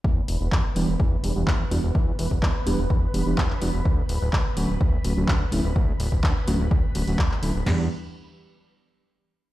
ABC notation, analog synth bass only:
X:1
M:4/4
L:1/16
Q:1/4=126
K:Edor
V:1 name="Analog synth bass" clef=bass
E,, z E,,, E,,, E,, z E,,, E,,, E,, z E,,, E,,, E,, z E,,, E,,, | E,, z E,,, E,,, E,, z E,,, E,,, E,, z E,,, E,,, E,, z E,,, E,,, | D,, z D,,, D,,, D,, z D,,, D,,, D,, z D,,, D,,, D,, z D,,, D,,, | D,, z D,,, D,,, D,, z D,,, D,,, D,, z D,,, D,,, D,, z D,,, D,,, |
E,,2 z12 z2 |]